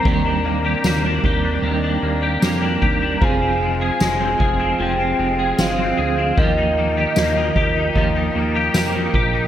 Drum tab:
RD |----x---|--x-x---|--x-x---|
TB |--x---x-|--x---x-|--x---x-|
SD |--o---o-|--o---o-|--o---o-|
BD |o--o---o|o--o----|o--oo--o|